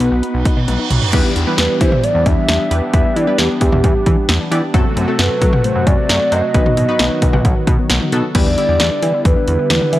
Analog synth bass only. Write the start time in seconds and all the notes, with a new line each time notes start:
0.00 B1
0.12 B1
0.34 B1
0.57 B2
0.68 B1
0.91 B1
1.13 E2
1.36 E2
1.58 E2
1.81 E3
2.15 E2
2.26 E2
2.48 E2
2.71 E2
2.94 E2
3.16 E3
3.39 E2
3.61 E2
3.72 E2
3.84 E2
4.06 E3
4.29 E2
4.51 E3
4.74 F#2
4.97 F#2
5.19 F#2
5.42 F#3
5.75 F#2
5.87 F#2
6.09 F#2
6.32 F#2
6.54 B1
6.77 B2
7.00 B1
7.22 B1
7.33 B1
7.45 B1
7.67 B2
7.90 B1
8.12 B2
8.35 E2
8.46 E2
8.69 E2
8.80 E2
9.02 E3
9.25 E2
9.48 E2
9.70 E2
9.93 E3